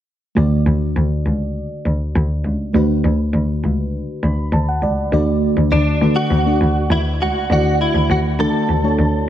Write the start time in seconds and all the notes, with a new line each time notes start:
0.35 D2 D3 A3 D4 F#4 D5
0.66 D2
0.96 D2
1.26 C#2
1.86 D2
2.15 D2
2.45 C#2
2.73 D2 D3 A3 D4 F#4 B4
3.04 D2
3.34 D2
3.64 C#2
4.23 D2 B5
4.52 D2 A5
4.69 F#5
4.83 C#2 D5
5.12 D2 D3 A3 D4 F#4 D5
5.57 D2
5.72 D2 D4
6.01 D3 A3 D4 F#4 B4
6.16 F#4
6.31 D2
6.46 A3 D4 F#4 D5
6.61 D2
6.90 D2 E4
7.20 C#2 F#4
7.50 D2 D3 A3 D4 E4 F#4 D5
7.57 F#4
7.81 E4
7.95 D2
8.09 D2 F#4
8.39 D3 A3 D4 F#4 A4 D5
8.69 D2
8.83 A3 D4 F#4 C#5
8.99 D2